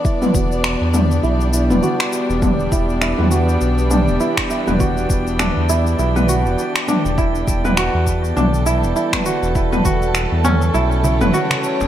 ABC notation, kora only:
X:1
M:4/4
L:1/16
Q:"Swing 16ths" 1/4=101
K:Edor
V:1 name="Kora"
E B F z3 D z E z E B F z3 | D z E z E B F z3 D z E z E B | F z3 D z E z E B F z3 D z | E z E B F z3 D z E z E B F z |
E B F z3 C z E z E B F z3 |]